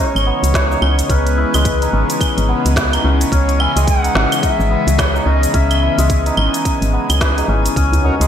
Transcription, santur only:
Already playing: G#3 C#4 D#4
0.27 B3
0.54 B4
0.71 D#4
0.82 C#4
1.10 C#4
1.38 E4
1.54 G#3
1.82 D#4
1.93 C#4
2.49 B3
2.77 B4
2.93 D#4
3.04 C#4
3.32 C#4
3.60 E4
3.76 G#3
4.04 D#4
4.15 C#4
4.71 B3
4.98 B4
5.15 D#4
5.26 C#4
5.54 C#4
5.82 E4
5.99 G#3
6.26 D#4
6.37 C#4
6.93 B3
7.21 B4
7.38 D#4
7.49 C#4
7.77 C#4
8.04 D#4
8.21 G#3

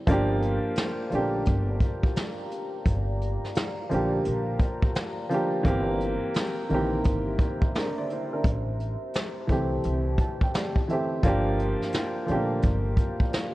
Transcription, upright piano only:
0.06 F3 A#3 D4
0.11 G4
1.10 F3 A3 D4
1.15 A#3 G4
3.89 F3 A#3 D4
3.94 G4
5.29 F3 A#3 D4
5.34 G4
5.63 E3 A#3 C4
5.68 G4
6.69 D#3 A#3 C4
6.74 E3 G4
7.76 D4 A#4
7.98 D5
8.12 E4 C5
8.33 D4 A#4
9.47 E3 A3 C4
9.52 G4
10.21 A5
10.43 G5
10.55 D5
10.88 E3 A3 C4 E5
10.93 G4
11.23 F3 A#3 D4
11.28 G4
12.26 F3 A3 D4
12.31 A#3 G4

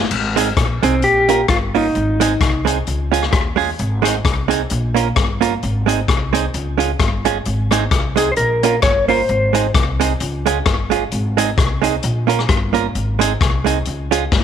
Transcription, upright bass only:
0.11 G#1
0.57 A#1
0.83 C2
1.03 A#1
1.49 G1
1.95 G#1
2.41 C2
2.87 C#2
3.33 D#2
3.79 G#1
4.25 C2
4.71 A#1
5.17 G1
5.63 G#1
6.09 C2
6.54 C#2
7.00 G1
7.46 G#1
7.92 C2
8.38 A#1
8.83 G1
9.29 G#1
9.75 C2
10.21 C#2
10.66 G1
11.12 G#1
11.58 C2
12.04 A#1
12.50 G1
12.95 G#1
13.41 C2
13.87 C#2
14.32 G1

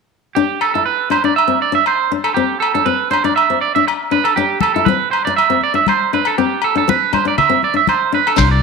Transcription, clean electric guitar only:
0.35 G4
0.61 A4
0.74 A4
0.86 B4
1.11 C5
1.25 D5
1.36 E5
1.62 D5
1.75 E5
1.87 C5
2.24 A4
2.34 G4
2.60 A4
2.74 A4
2.86 B4
3.11 C5
3.25 D5
3.36 E5
3.61 D5
3.75 E5
3.88 muted clean electric guitar stroke
4.12 B4
4.24 A4
4.36 G4
4.61 A4
4.74 A4
4.85 B4
5.11 C5
5.25 D5
5.36 E5
5.64 D5
5.75 E5
5.89 C5
6.14 B4
6.27 A4
6.38 G4
6.64 A4
6.77 A4
6.89 B4
7.14 C5
7.28 D5
7.38 E5
7.64 D5
7.77 E5
7.89 C5
8.14 B4
8.27 A4
8.38 C5
8.51 D5

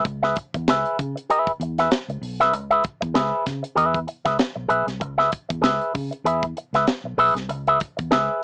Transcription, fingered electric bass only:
0.05 C#2
0.55 E2
0.68 C#2
0.99 C#3
1.60 E2
2.08 C#2
2.21 B1
2.40 C2
2.53 C#2
3.02 E2
3.16 C#2
3.47 C#3
3.77 E2
4.25 C#2
4.56 B1
4.70 B1
4.87 C2
5.01 C#2
5.50 E2
5.62 C#2
5.95 C#3
6.24 E2
6.73 C#2
7.04 B1
7.17 B1
7.35 C2
7.49 C#2
7.99 E2
8.12 C#2

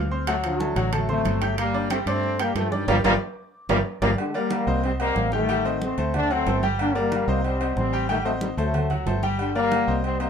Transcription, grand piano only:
0.11 C4 C5 C6
0.27 F#3 F#4 F#5
0.60 A3 A4 A5
0.76 F#3 F#4 F#5
0.92 A3 A4 A5
1.09 C4 C5 C6
1.41 G4 G5 G6
1.74 D4 D5 D6
1.91 G3 G4 G5
2.07 D4 D5 D6
2.40 G4 G5 G6
2.72 D4 D5 D6
2.88 G4 A#4 D5
3.04 G4 A#4 D5
3.70 G4 A#4 D5
4.02 G4 A#4 D5
4.34 A#3 A#4 D5
4.67 C4 C5 D#5
5.00 C4 C5 D#5
5.32 G3 G4 G5
5.49 G3 G4 G5
5.65 C4 C5 D#5
5.98 A3 A4 C5
6.30 F#3 F#4 F#5
6.47 A3 A4 C5
6.63 G3 G4 G5
6.95 A#3 A#4 D5
7.28 C4 C5 D#5
7.61 C4 C5 D#5
7.93 G3 G4 G5
8.09 G3 G4 G5
8.25 C4 C5 D#5
8.57 A3 A4 C5
8.90 F#3 F#4 F#5
9.07 A3 A4 C5
9.23 G3 G4 G5
9.55 A#3 A#4 D5
9.88 C4 C5 D#5
10.20 C4 C5 D#5

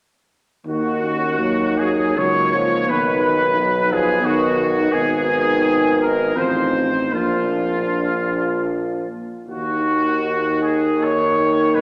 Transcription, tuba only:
0.65 D#2
2.17 C#2
2.88 B1
4.92 G#1
6.36 A1
7.11 A#1
9.47 D#2
11.74 B1

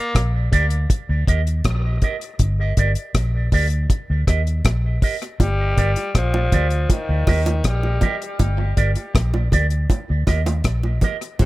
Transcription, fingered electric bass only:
0.15 A#1
0.53 D2
1.09 D2
1.28 D#2
1.65 A#1
2.40 G1
2.78 G1
3.15 A#1
3.53 D2
4.10 D2
4.28 D#2
4.65 A#1
5.40 G1
5.78 G1
6.15 A#1
6.53 D2
7.09 D2
7.28 D#2
7.65 A#1
8.40 G1
8.78 G1
9.15 A#1
9.53 D2
10.10 D2
10.28 D#2
10.65 A#1
11.40 G1

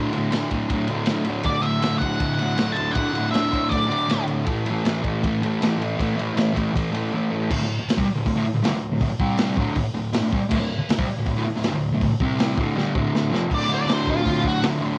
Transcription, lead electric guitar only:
1.46 D5
1.62 E5
1.98 F#5
2.34 F#5
2.72 A5
2.92 F#5
3.31 E5
3.69 D5
13.54 D5
13.74 D5
13.93 C5
14.10 F4
14.48 F#4

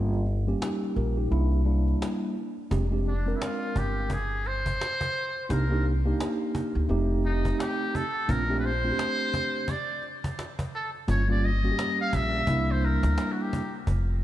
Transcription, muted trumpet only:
3.08 D4
3.36 E4
3.43 F4
3.78 G4
4.13 G#4
4.47 C5
5.46 C5
5.52 A#4
7.26 D#4
7.60 G4
7.96 A4
8.31 A#4
8.59 B4
8.65 C5
9.70 D5
10.75 A4
11.10 C#5
11.31 D5
11.45 D#5
12.01 F5
12.15 E5
12.71 C5
12.85 A#4
13.32 F#4
13.41 G4

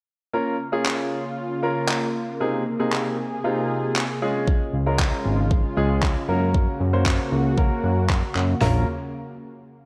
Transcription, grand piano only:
0.33 A#3 C#4 F4 A#4
0.72 A#3 C#4 F4 G#4
1.63 A#3 C#4 F4 A#4
2.40 C3 A#3 C4 D#4 G#4
2.79 C3 A#3 C4 D#4 G#4
3.44 C3 A#3 C4 D#4 F4
4.22 G#3 C#4 F4 G#4
4.86 G#3 C#4 F4 A#4
5.77 G#3 C#4 F4 G#4
6.28 A#3 C#4 F#4 A#4
6.93 A#3 C#4 F#4 C5
7.58 A#3 C#4 F#4 A#4
8.61 A#3 C#4 F4 A#4

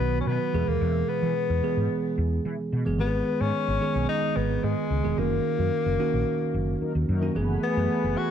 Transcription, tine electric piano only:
Already playing: D#3 F#3 B3 F#4
0.53 B2 E3 G#3 G#4
1.63 E3 G#3 B3 G#4
2.85 E3 G#3 B3 G#4
2.99 D#3 G#3 B3 G4
3.07 G#4
3.81 D#3 G#3 B3 G#4
5.04 D#3 G#3 B3 G#4
5.17 D#3 A#3 C#4 F#4
5.99 D#3 A#3 C#4 F#4
7.22 D#3 A#3 C#4 F#4
7.35 E3 A3 B3 G#4
7.76 E3 A3 B3 G#4

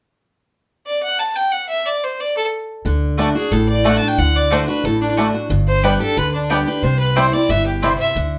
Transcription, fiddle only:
0.86 D5
1.03 F#5
1.18 A5
1.35 G5
1.51 F#5
1.69 E5
1.86 D5
2.03 C5
2.20 D5
2.37 A4
3.35 G#4
3.52 A4
3.69 D5
3.86 F#5
3.96 A5
4.08 G5
4.18 F#5
4.36 D5
4.52 C5
4.68 B4
4.84 A4
5.01 D4
5.67 C5
5.84 B4
6.01 A4
6.17 B4
6.34 D4
6.50 G4
6.67 B4
6.83 C5
6.99 B4
7.16 C5
7.33 D5
7.49 E5
7.66 G4
7.83 C5
7.98 E5

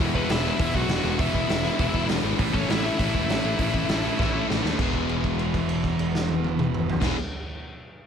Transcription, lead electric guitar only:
0.16 B3 B4
0.30 E4 E5
0.60 E4 E5
0.76 F#4 F#5
1.20 E4 E5
2.54 C#4 C#5
2.70 E4 E5
2.84 E4 E5

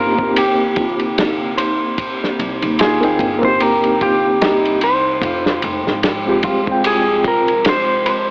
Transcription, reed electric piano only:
Already playing: A#3 C4 D#4 G4
0.15 A#3 C4
0.21 D#4 G4
3.01 A#3 C4 D#4 G5
3.39 A#3 C4
3.45 D#4 G4
6.25 G#3 C4 F4
6.29 G4
6.63 G#3 C4
6.69 F4 G5

